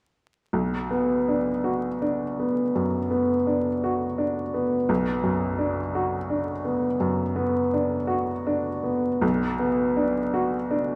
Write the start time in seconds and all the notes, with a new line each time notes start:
0.53 B1
0.91 B3
1.28 D4
1.64 F#4
2.02 D4
2.39 B3
2.75 F#2
3.11 B3
3.47 D4
3.84 F#4
4.18 D4
4.54 B3
4.89 B1
5.24 F#2
5.59 D4
5.95 F#4
6.30 D4
6.65 B3
7.00 F#2
7.36 B3
7.73 D4
8.07 F#4
8.47 D4
8.83 B3
9.22 B1
9.59 B3
9.97 D4
10.34 F#4
10.71 D4